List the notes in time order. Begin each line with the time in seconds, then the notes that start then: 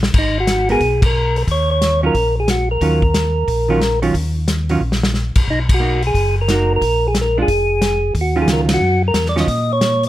Already playing: A#1
0.03 snare
0.14 G#1, kick, crash
0.18 D#4
0.40 F#4
0.47 snare, closed hi-hat
0.69 G#3 B3 F#4 G#4 A#4, open hi-hat
0.80 B1, kick, open hi-hat
1.02 A#4, kick, crash
1.36 A#4, open hi-hat
1.47 D#2, kick, open hi-hat
1.51 C#5
1.71 C#5
1.82 snare, closed hi-hat
2.03 D#3 F#3 C#4 F4 A#4
2.14 A#1, kick, open hi-hat
2.40 G#4
2.48 F#4, snare, closed hi-hat
2.71 A#4
2.81 D#2 D#3 F#3 C#4 F4, kick, open hi-hat
3.02 kick
3.14 snare, closed hi-hat
3.47 A#1, kick, open hi-hat
3.69 D#3 F#3 C#4 F4
3.81 snare, closed hi-hat
4.02 D#3 F#3 C#4 F4, open hi-hat
4.14 D#2, kick, open hi-hat
4.48 snare, closed hi-hat
4.69 D#3 F#3 C#4 F4, open hi-hat
4.80 A#1
4.92 snare
5.03 snare
5.14 snare
5.35 A#1, kick, crash
5.47 B1 D#4, kick
5.69 kick, crash
5.74 F#4
5.80 A#3 D#4 F#4
6.02 open hi-hat
6.07 G#4
6.14 F#1, kick, open hi-hat
6.41 A#4
6.48 A#3 D#4 F#4, snare, closed hi-hat
6.76 A#4
6.81 A#1, kick, open hi-hat
7.08 G#4
7.15 snare, closed hi-hat
7.21 A#4
7.38 G#3 D4 F4
7.42 G#4
7.48 F1, kick, open hi-hat
7.82 snare, closed hi-hat
8.15 D#2, kick, open hi-hat
8.21 F#4
8.36 D#3 F#3 C#4 F4
8.42 G#4
8.47 C#2, snare, closed hi-hat
8.53 A#4
8.69 snare, ride
8.74 F#4
8.81 F#2
9.08 A#4
9.14 E2, snare, closed hi-hat
9.26 D5, snare
9.36 D#3 F#3 C#4 F4, snare
9.40 D#5
9.47 A#2, kick, open hi-hat
9.73 C#5
9.81 snare, closed hi-hat
10.03 open hi-hat